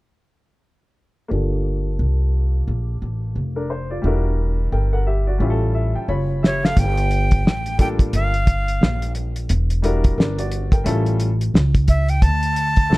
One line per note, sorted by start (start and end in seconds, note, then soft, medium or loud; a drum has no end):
1.28 1.96 G1 medium
1.28 3.64 A#3 medium
1.28 3.31 D4 medium
1.28 3.32 F4 medium
1.28 3.32 G4 medium
1.33 3.33 A4 medium
1.99 2.64 C2 medium
2.68 3.00 A#1 medium
3.02 3.34 A1 medium
3.36 4.00 F1 medium
3.56 3.69 D4 medium
3.56 3.69 A#4 medium
3.70 3.89 C5 medium
3.91 4.23 F4 soft
3.91 4.23 D5 medium
4.02 4.69 E1 medium
4.02 5.36 G3 medium
4.02 5.37 D4 medium
4.02 5.38 E4 medium
4.02 4.72 F#4 medium
4.07 4.71 A#4 medium
4.72 5.37 G1 medium
4.72 4.92 A#4 soft
4.72 4.92 G5 medium
4.93 5.06 A#4 soft
4.93 5.06 F#5 medium
5.07 5.26 G4 medium
5.07 5.26 E5 medium
5.27 5.60 F#4 soft
5.27 5.59 D5 medium
5.38 5.92 A1 medium
5.38 6.73 G3 medium
5.38 6.74 C#4 medium
5.38 6.07 E4 medium
5.38 6.08 F4 medium
5.44 5.50 G4 medium
5.50 6.12 A4 medium
5.74 5.93 E5 medium
5.95 6.08 G5 medium
5.95 muted upright bass stroke soft
6.08 6.73 F#1 medium
6.08 6.41 F4 medium
6.08 6.41 C#5 medium
6.08 6.73 B5 medium
6.43 6.62 G4 medium
6.43 6.67 C#5 medium
6.43 6.62 E5 medium
6.43 snare medium
6.63 6.96 A4 soft
6.63 6.96 F5 medium
6.63 6.81 F5 medium
6.63 snare medium
6.77 7.42 G1 loud
6.77 7.80 G5 loud
6.77 kick medium
6.77 closed hi-hat medium
6.97 closed hi-hat medium
7.11 closed hi-hat medium
7.31 kick medium
7.31 closed hi-hat soft
7.45 8.10 A1 medium
7.45 snare loud
7.66 closed hi-hat soft
7.78 8.29 G3 medium
7.78 8.29 A#3 medium
7.78 8.30 D4 medium
7.78 8.30 F4 medium
7.78 8.30 A4 medium
7.78 7.88 G5 medium
7.78 kick medium
7.78 closed hi-hat medium
7.99 kick medium
7.99 closed hi-hat soft
8.13 8.78 G1 medium
8.13 9.12 F5 medium
8.13 closed hi-hat medium
8.34 closed hi-hat soft
8.47 kick medium
8.47 closed hi-hat medium
8.68 closed hi-hat soft
8.81 9.46 A#1 medium
8.81 snare loud
9.02 closed hi-hat medium
9.15 closed hi-hat medium
9.36 closed hi-hat soft
9.49 10.14 E1 loud
9.49 closed hi-hat medium
9.70 closed hi-hat soft
9.82 10.25 G3 medium
9.82 10.17 D4 medium
9.82 10.18 E4 medium
9.82 10.18 F#4 medium
9.82 10.16 A#4 medium
9.82 closed hi-hat medium
10.04 kick medium
10.04 closed hi-hat soft
10.18 10.82 G1 medium
10.18 10.37 D4 medium
10.18 10.37 A#4 medium
10.18 snare loud
10.38 10.71 F#4 medium
10.38 10.71 D5 medium
10.38 closed hi-hat medium
10.52 closed hi-hat medium
10.72 11.05 A#4 soft
10.72 11.05 G5 medium
10.72 kick medium
10.72 closed hi-hat medium
10.84 11.51 A1 loud
10.84 11.27 G3 medium
10.84 11.28 C#4 medium
10.84 11.28 E4 medium
10.84 11.28 F4 medium
10.84 11.29 A4 medium
10.84 closed hi-hat medium
11.06 closed hi-hat soft
11.20 closed hi-hat medium
11.41 closed hi-hat soft
11.54 12.19 C#2 medium
11.54 snare loud
11.75 kick medium
11.75 closed hi-hat soft
11.88 12.11 E5 medium
11.88 kick medium
11.88 closed hi-hat medium
12.08 12.24 G5 medium
12.08 closed hi-hat soft
12.22 12.87 D2 loud
12.22 12.98 A5 loud
12.22 kick medium
12.22 closed hi-hat medium
12.43 closed hi-hat medium
12.56 closed hi-hat medium
12.76 kick medium
12.76 closed hi-hat soft
12.89 12.98 C2 medium
12.89 12.98 A3 medium
12.89 12.98 C4 medium
12.89 12.98 D4 medium
12.89 12.98 F4 medium
12.89 12.98 A4 medium
12.89 snare loud